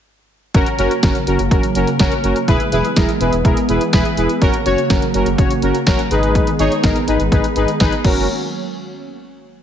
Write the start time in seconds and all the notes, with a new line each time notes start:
0.54 F#1 C#3 F#3 A#3 C#4 F#4 A#4, kick, closed hi-hat
0.66 closed hi-hat
0.79 F#1 C#4 F#4 A#4, closed hi-hat
0.91 closed hi-hat
1.03 F#1 C#4 F#4 A#4, kick, snare, closed hi-hat
1.15 closed hi-hat
1.27 F#1 C#4 F#4 A#4, closed hi-hat
1.39 F#1, closed hi-hat
1.51 F#1 C#4 F#4 A#4, kick, closed hi-hat
1.63 closed hi-hat
1.75 F#1 C#4 F#4 A#4, closed hi-hat
1.87 closed hi-hat
1.99 F#1 C#4 F#4 A#4, kick, snare, closed hi-hat
2.12 closed hi-hat
2.24 F#1 C#4 F#4 A#4, closed hi-hat
2.36 closed hi-hat
2.48 E1 E3 G#3 B3 E4 G#4 B4, kick, closed hi-hat
2.60 closed hi-hat
2.72 E1 E4 G#4 B4, closed hi-hat
2.85 closed hi-hat
2.96 E1 E4 G#4 A#4, kick, snare, closed hi-hat
3.09 closed hi-hat
3.20 E1 E4 G#4 B4, closed hi-hat
3.33 E1, closed hi-hat
3.45 E1 E4 G#4 A#4, kick, closed hi-hat
3.57 closed hi-hat
3.69 E1 E4 G#4 B4, closed hi-hat
3.81 closed hi-hat
3.93 E1 E4 G#4 B4, kick, snare, closed hi-hat
4.05 closed hi-hat
4.17 E1 E4 G#4 B4, closed hi-hat
4.29 closed hi-hat
4.41 F#1 C#3 F#3 A#3 C#4 F#4 A#4, kick, closed hi-hat
4.54 closed hi-hat
4.66 F#1 C#4 F#4 C#5, closed hi-hat
4.78 closed hi-hat
4.90 F#1 C#4 F#4 A#4, kick, snare, closed hi-hat
5.02 closed hi-hat
5.14 F#1 C#4 F#4 A#4, closed hi-hat
5.26 F#1, closed hi-hat
5.38 F#1 C#4 F#4 C#5, kick, closed hi-hat
5.51 closed hi-hat
5.62 F#1 C#4 F#4 A#4, closed hi-hat
5.75 closed hi-hat
5.87 F#1 C#4 F#4 A#4, kick, snare, closed hi-hat
5.99 closed hi-hat
6.11 G#1 D#3 G#3 B3 D#4 G#4 B4, closed hi-hat
6.23 closed hi-hat
6.35 kick, closed hi-hat
6.47 closed hi-hat
6.59 G#1 D#4 G#4 C#5, closed hi-hat
6.72 closed hi-hat
6.83 G#1 D#4 G#4 A#4, kick, snare, closed hi-hat
6.96 closed hi-hat
7.08 G#1 D#4 G#4 B4, closed hi-hat
7.20 G#1, closed hi-hat
7.32 G#1 D#4 G#4 B4, kick, closed hi-hat
7.44 closed hi-hat
7.56 G#1 D#4 G#4 B4, closed hi-hat
7.68 closed hi-hat
7.80 G#1 D#4 G#4 B4, kick, snare, closed hi-hat
7.92 closed hi-hat
8.04 F#1 F#3 A#3 C#4 F#4 A#4, kick, crash